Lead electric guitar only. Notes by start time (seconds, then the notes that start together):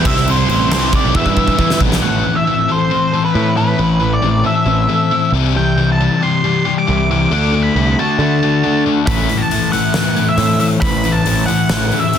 0.07 E5
0.31 C5
0.95 D5
1.16 E5
2.03 F#5
2.36 E5
2.72 C5
3.25 B4
3.57 B4
4.13 D5
4.46 E5
5.57 G5
5.92 A5
6.23 C6
6.79 D6
7.11 D6
7.63 B5
7.99 A5
9.07 B5
9.38 A5
9.72 F#5
10.29 E5
10.60 E5
10.81 B5
11.12 A5
11.46 F#5
12.00 E5